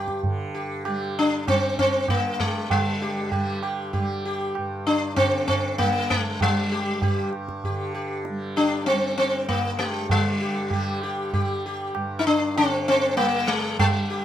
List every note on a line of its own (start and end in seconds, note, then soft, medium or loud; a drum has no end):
0.00 2.11 G2 medium
0.00 0.25 D3 medium
0.00 0.87 G3 medium
0.00 0.21 G4 soft
0.08 tabla ke medium
0.23 2.73 D3 medium
0.23 tabla tin medium
0.23 tabla ge medium
0.54 0.83 G4 soft
0.85 1.48 G3 medium
0.85 1.14 G4 soft
0.85 tabla na medium
1.19 1.48 D4 medium
1.48 3.36 G3 medium
1.48 1.78 C4 medium
1.48 tabla na medium
1.48 tabla ge medium
1.78 2.10 C4 medium
1.78 tabla ge soft
2.08 4.57 G2 medium
2.08 2.41 A#3 medium
2.08 tabla na medium
2.08 tabla ge medium
2.40 2.71 G#3 medium
2.40 tabla ge soft
2.70 5.20 D3 medium
2.70 3.59 G3 medium
2.70 tabla tin medium
2.70 tabla ge medium
3.02 3.30 G4 soft
3.32 3.98 G3 medium
3.32 3.61 G4 soft
3.32 tabla tin medium
3.32 tabla ge medium
3.63 3.92 G4 soft
3.63 tabla na medium
3.93 4.22 G4 soft
3.93 tabla tin medium
3.93 tabla ge medium
3.98 5.81 G3 medium
4.25 4.54 G4 soft
4.55 7.05 G2 medium
4.55 tabla na medium
4.87 5.16 D4 medium
5.16 7.68 D3 medium
5.16 5.46 C4 medium
5.16 tabla na medium
5.16 tabla ge medium
5.48 5.77 C4 medium
5.48 tabla ge soft
5.78 6.43 G3 medium
5.78 6.10 A#3 medium
5.78 tabla na medium
5.78 tabla ge medium
6.10 6.42 G#3 medium
6.10 tabla ge soft
6.41 7.30 G3 medium
6.41 8.29 G3 medium
6.41 tabla tin loud
6.41 tabla ge medium
6.72 7.00 G4 soft
7.02 7.31 G4 soft
7.02 tabla tin medium
7.02 tabla ge medium
7.06 9.52 G2 medium
7.33 tabla na medium
7.49 tabla ke medium
7.64 7.93 G4 soft
7.64 tabla tin medium
7.64 tabla ge medium
7.68 10.11 D3 medium
7.95 8.23 G4 soft
8.25 tabla te medium
8.29 8.92 G3 medium
8.56 8.86 D4 medium
8.56 8.85 G4 soft
8.56 tabla te medium
8.86 9.16 C4 medium
8.86 tabla tin medium
8.92 10.71 G3 medium
9.18 9.48 C4 medium
9.49 11.95 G2 medium
9.49 9.80 A#3 medium
9.49 tabla na medium
9.49 tabla ge medium
9.79 10.08 G#3 medium
9.79 10.08 G4 soft
9.79 tabla te medium
10.10 12.56 D3 medium
10.10 10.99 G3 medium
10.10 tabla tin medium
10.10 tabla ge medium
10.41 10.70 G4 soft
10.70 11.34 G3 medium
10.70 11.01 G4 soft
10.70 tabla tin medium
10.70 tabla ge medium
11.02 11.32 G4 soft
11.02 tabla na medium
11.33 13.18 G3 medium
11.33 11.62 G4 soft
11.33 tabla tin medium
11.33 tabla ge medium
11.66 11.94 G4 soft
11.95 14.25 G2 medium
11.95 tabla na medium
12.19 12.26 D#4 medium
12.27 12.57 D4 medium
12.56 14.25 D3 medium
12.56 12.87 C4 loud
12.56 tabla tin medium
12.88 13.16 C4 medium
13.17 13.79 G3 medium
13.17 13.49 A#3 medium
13.17 tabla na medium
13.47 13.79 G#3 medium
13.79 14.25 G3 medium
13.79 13.90 G#3 medium
13.79 tabla tin medium
13.79 tabla ge loud
13.90 14.25 G3 medium
14.10 14.25 G4 soft